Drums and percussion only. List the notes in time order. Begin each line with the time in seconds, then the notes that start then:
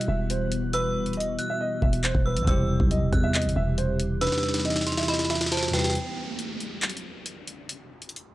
0.01 closed hi-hat
0.30 closed hi-hat
0.52 closed hi-hat
0.73 closed hi-hat
1.06 closed hi-hat
1.13 closed hi-hat
1.20 closed hi-hat
1.39 closed hi-hat
1.82 kick
1.93 closed hi-hat
2.04 clap, closed hi-hat
2.15 kick
2.37 closed hi-hat
2.47 kick, closed hi-hat
2.80 kick
2.91 closed hi-hat
3.13 kick, closed hi-hat
3.34 clap, closed hi-hat
3.42 closed hi-hat
3.49 closed hi-hat
3.78 closed hi-hat
4.00 closed hi-hat
4.21 snare, closed hi-hat
4.27 snare
4.32 snare
4.38 snare
4.43 snare
4.48 snare
4.54 snare, closed hi-hat
4.59 snare
4.65 snare
4.70 snare
4.76 snare
4.81 snare
4.87 snare, closed hi-hat
4.92 snare
4.97 snare
5.03 snare
5.08 snare
5.14 snare
5.19 snare
5.25 snare
5.30 snare
5.35 snare
5.41 snare, closed hi-hat
5.46 snare
5.52 snare, closed hi-hat
5.57 snare
5.63 snare
5.68 snare
5.73 snare
5.79 snare
5.84 snare, closed hi-hat
5.90 snare
5.95 closed hi-hat
6.39 closed hi-hat
6.60 closed hi-hat
6.82 clap, closed hi-hat
6.89 closed hi-hat
6.97 closed hi-hat
7.26 closed hi-hat
7.47 closed hi-hat
7.69 closed hi-hat
8.02 closed hi-hat
8.09 closed hi-hat
8.16 closed hi-hat